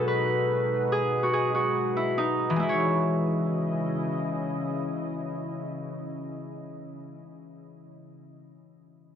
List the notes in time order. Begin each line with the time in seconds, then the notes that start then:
Already playing: B2 F#3 G#3 D#4 F#4 G#4 A4 B4
0.08 B4
0.92 G#4
1.23 F#4
1.33 G#4
1.55 F#4
1.97 E4
2.18 D#4
2.50 E3
2.56 C#3 G#3 C#4 E4 D#5
2.63 E4
2.69 C#5